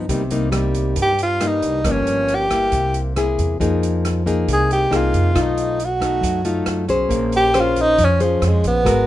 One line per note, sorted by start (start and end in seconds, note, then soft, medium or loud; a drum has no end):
0.09 0.30 C2 loud
0.09 0.95 C3 medium
0.09 0.22 G3 medium
0.09 0.22 A#3 medium
0.09 0.23 D#4 medium
0.09 kick medium
0.09 closed hi-hat medium
0.31 0.93 C2 medium
0.31 0.50 G3 medium
0.31 0.50 A#3 medium
0.31 0.50 D#4 medium
0.31 closed hi-hat soft
0.52 1.11 G3 medium
0.52 1.12 A#3 medium
0.52 1.12 D#4 medium
0.52 cross-stick medium
0.52 closed hi-hat soft
0.74 kick soft
0.74 closed hi-hat soft
0.96 1.82 G2 medium
0.96 1.59 G2 medium
0.96 kick medium
0.96 closed hi-hat medium
1.02 1.20 G4 medium
1.19 closed hi-hat soft
1.23 1.48 F4 medium
1.40 1.81 G3 medium
1.40 1.81 A#3 medium
1.40 1.82 D#4 medium
1.40 cross-stick medium
1.40 closed hi-hat soft
1.47 1.93 D#4 medium
1.62 1.83 C2 medium
1.62 kick soft
1.62 closed hi-hat soft
1.84 2.05 G1 loud
1.84 2.71 G2 medium
1.84 2.47 F3 medium
1.84 2.48 A#3 medium
1.84 2.48 C#4 medium
1.84 kick medium
1.84 cross-stick medium
1.84 closed hi-hat medium
1.91 2.36 C#4 medium
2.07 2.69 G1 medium
2.07 closed hi-hat soft
2.28 closed hi-hat soft
2.35 2.98 G4 loud
2.50 3.13 A#3 medium
2.50 3.13 E4 medium
2.50 kick soft
2.50 cross-stick medium
2.50 closed hi-hat soft
2.72 3.34 C2 medium
2.72 3.58 C3 medium
2.72 kick medium
2.72 closed hi-hat medium
2.94 closed hi-hat soft
3.16 3.59 A#3 medium
3.16 3.59 E4 medium
3.16 3.59 G#4 medium
3.16 cross-stick medium
3.16 closed hi-hat soft
3.39 3.59 E2 medium
3.39 kick soft
3.39 closed hi-hat soft
3.60 4.44 F2 loud
3.60 4.46 F3 medium
3.60 4.23 A#3 soft
3.60 4.23 D#4 medium
3.60 4.23 G#4 medium
3.60 kick medium
3.60 closed hi-hat medium
3.83 closed hi-hat soft
4.05 cross-stick medium
4.05 closed hi-hat soft
4.26 4.88 A#3 medium
4.26 4.89 D#4 medium
4.26 4.89 G#4 medium
4.26 kick soft
4.26 closed hi-hat soft
4.48 4.89 C2 medium
4.48 5.34 C3 medium
4.48 kick medium
4.48 closed hi-hat medium
4.53 4.71 G#4 medium
4.71 4.98 G4 medium
4.71 closed hi-hat soft
4.91 5.12 C2 medium
4.91 5.32 A#3 medium
4.91 5.32 D#4 medium
4.91 5.32 G#4 medium
4.91 cross-stick medium
4.91 closed hi-hat soft
4.97 5.43 F4 medium
5.14 5.34 F2 medium
5.14 kick soft
5.14 closed hi-hat soft
5.34 6.19 B1 loud
5.34 6.21 B2 medium
5.34 5.79 A3 medium
5.34 5.79 D#4 medium
5.34 5.79 F4 medium
5.34 kick medium
5.34 cross-stick medium
5.34 closed hi-hat medium
5.41 5.87 D#4 medium
5.57 closed hi-hat soft
5.80 closed hi-hat soft
5.85 6.48 F#4 medium
6.00 6.41 A3 medium
6.00 6.42 D#4 medium
6.00 kick soft
6.00 cross-stick medium
6.00 closed hi-hat soft
6.21 6.64 F#2 medium
6.21 7.08 F#3 medium
6.21 kick medium
6.21 closed hi-hat medium
6.45 6.86 A3 medium
6.45 6.86 D#4 medium
6.45 6.86 F4 medium
6.45 closed hi-hat soft
6.66 6.88 F#2 medium
6.66 cross-stick medium
6.66 closed hi-hat soft
6.88 7.09 B1 medium
6.88 7.53 C#4 medium
6.88 7.54 G#4 medium
6.88 7.54 C5 medium
6.88 kick soft
6.88 closed hi-hat soft
7.09 7.94 A#1 loud
7.09 7.96 A#3 medium
7.09 kick medium
7.09 closed hi-hat medium
7.32 7.62 G4 medium
7.32 closed hi-hat soft
7.54 7.98 C#4 medium
7.54 7.99 G#4 medium
7.54 7.99 C5 medium
7.54 cross-stick medium
7.54 closed hi-hat soft
7.60 7.82 F4 medium
7.76 kick soft
7.76 closed hi-hat soft
7.81 8.06 D#4 loud
7.98 8.39 F2 medium
7.98 8.84 F3 medium
7.98 kick medium
7.98 closed hi-hat medium
8.04 8.23 C#4 medium
8.20 8.49 F3 medium
8.20 8.83 C#4 medium
8.20 8.83 G#4 medium
8.20 8.83 C5 medium
8.20 closed hi-hat soft
8.42 8.63 F2 medium
8.42 cross-stick medium
8.42 closed hi-hat soft
8.47 8.67 G#3 medium
8.64 8.85 A#1 medium
8.64 9.07 B3 medium
8.64 kick soft
8.64 closed hi-hat soft
8.85 9.07 G#1 loud
8.85 9.07 G#3 medium
8.85 9.07 B3 medium
8.85 9.07 F#4 medium
8.85 9.07 A#4 medium
8.85 kick medium
8.85 cross-stick medium
8.85 closed hi-hat medium